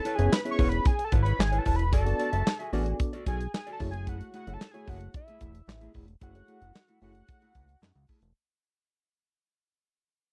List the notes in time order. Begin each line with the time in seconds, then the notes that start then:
Already playing: A5
0.05 E4 B4 C#5, closed hi-hat
0.15 F#1 B3 C#4 E4 G#4 C#5 E5 G#5, closed hi-hat
0.19 E4 B4
0.32 B5, muted clean electric guitar stroke, snare, clap
0.45 B3 C#4 E4 G#4 B4 C#5 E5, closed hi-hat
0.51 C#6
0.59 E1 E4 B4 C#5, kick, open hi-hat
0.69 B5, muted clean electric guitar stroke, closed hi-hat
0.85 G#5, muted clean electric guitar stroke, kick, closed hi-hat
0.99 muted clean electric guitar stroke, closed hi-hat
1.05 A5
1.12 G#1 E4 B4 C#5, kick, closed hi-hat
1.23 E4 B4 C#5 B5, closed hi-hat
1.39 G#1 G#5, muted clean electric guitar stroke, snare, clap
1.52 E4 B4 C#5, closed hi-hat
1.58 A5
1.66 E1 E4 B4 C#5, kick, open hi-hat
1.76 B5, muted clean electric guitar stroke, closed hi-hat
1.92 F#1 F#4 A4 D5 A5, kick, closed hi-hat
2.06 B3 D4 F#4 A4 D5, muted clean electric guitar stroke, closed hi-hat
2.19 F#4 A4 D5, closed hi-hat
2.32 F#1 F#4 A4 E5, closed hi-hat
2.46 muted clean electric guitar stroke, snare, clap
2.59 F#4 A4 E5 G#5, closed hi-hat
2.73 A1 B3 D4 F#4 A4 D5, open hi-hat
2.86 muted clean electric guitar stroke, closed hi-hat
2.99 muted clean electric guitar stroke, kick, closed hi-hat
3.13 F#4 A4 D5, closed hi-hat
3.26 B1 F#4 A4 D5 G#5, kick, closed hi-hat
3.40 muted clean electric guitar stroke, closed hi-hat
3.54 G#5, snare, clap
3.67 F#4 A4 D5, closed hi-hat
3.73 A5
3.79 F#1 A3 E4 F#4 G#4 C#5, kick, open hi-hat
3.91 G#5, muted clean electric guitar stroke, closed hi-hat
4.07 A3 E4 G#4 F#5, kick, closed hi-hat
4.20 muted clean electric guitar stroke, closed hi-hat
4.34 A3 E4 G#4 F#5, closed hi-hat
4.47 F#1 A3 E4 F#4 G#4 A4 C#5, closed hi-hat
4.54 A5
4.61 muted clean electric guitar stroke, snare, clap
4.71 A3 E4 F#4 G#4 A4 C#5 G#5, closed hi-hat
4.87 F#1 A3 E4 G#4 F#5, kick, open hi-hat
5.01 muted clean electric guitar stroke, closed hi-hat
5.14 E5, muted clean electric guitar stroke, kick, closed hi-hat
5.27 A3 E4 G#4, closed hi-hat
5.41 E1 A3 E4 G#4, kick, closed hi-hat
5.54 muted clean electric guitar stroke, closed hi-hat
5.67 A1, muted clean electric guitar stroke, snare, clap
5.81 A3 E4 G#4, closed hi-hat
5.94 E1 A3 E4 G#4, kick, open hi-hat
6.08 muted clean electric guitar stroke, closed hi-hat
6.21 F#1 A3 E4 G#4 C#5 F#5, kick, closed hi-hat
6.35 A3 E4 F#4 G#4 C#5, muted clean electric guitar stroke, closed hi-hat
6.48 A3 E4 G#4, closed hi-hat
6.61 F#1 A3 E4 A4, closed hi-hat
6.75 snare, clap
6.88 A3 E4 A4, closed hi-hat
7.01 F#1 A3 E4 F#4 G#4 C#5 F#5, open hi-hat
7.15 muted clean electric guitar stroke, closed hi-hat
7.28 kick, closed hi-hat
7.42 A3 E4 G#4, closed hi-hat
7.55 C#2 A3 E4 G#4, kick, closed hi-hat
7.68 muted clean electric guitar stroke, closed hi-hat
7.82 F#2, muted clean electric guitar stroke, snare, clap
7.95 C#2, muted clean electric guitar stroke, closed hi-hat
8.08 A3 E4 G#4, kick, open hi-hat
8.22 E1, muted clean electric guitar stroke, closed hi-hat